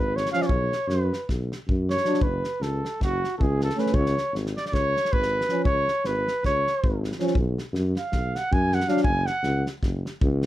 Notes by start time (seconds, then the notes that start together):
Already playing: G#1 B4
0.16 C#5, snare
0.26 snare
0.32 F3 C#4 F5, snare
0.42 D5, snare
0.46 B1 C#5, kick
0.72 snare
0.88 F#2 B4, snare
1.13 snare
1.29 B1, kick, snare
1.52 snare
1.68 F#2, kick
1.90 C#5, snare
1.97 snare
2.04 F#3 D4, snare
2.14 snare
2.21 F#1 B4, kick
2.44 snare
2.60 C#2 A4, snare
2.85 snare
3.00 F#1 F#4, kick, snare
3.24 snare
3.38 C#2 A4, kick
3.42 G#4
3.61 A4, snare
3.70 snare
3.76 A3 C#4 B4, snare
3.86 snare
3.93 C#2 C#5, kick
4.06 snare
4.18 snare
4.33 G#1, snare
4.46 snare
4.56 D5, snare
4.66 D5, snare
4.72 C#2 C#5, kick, snare
4.97 snare
5.05 snare
5.12 G#1 B4, kick
5.23 snare
5.41 snare
5.49 F3 C#4, snare
5.64 C#2 C#5, kick
5.88 snare
6.04 G#1 B4, snare
6.28 snare
6.44 C#2 C#5, kick, snare
6.67 snare
6.83 G#1, kick
7.04 snare
7.12 snare
7.19 F3 C#4, snare
7.27 snare
7.35 B1, kick
7.58 snare
7.73 F#2, snare
7.96 F5, snare
8.12 B1, kick, snare
8.35 F#5, snare
8.53 F#2 G#5, kick
8.72 F#5, snare
8.80 snare
8.88 F#3 D4 F5, snare
8.97 snare
9.04 F#1 G#5, kick
9.26 F#5, snare
9.43 C#2, snare
9.66 snare
9.82 F#1, kick, snare
10.06 snare
10.21 C#2, kick
10.42 snare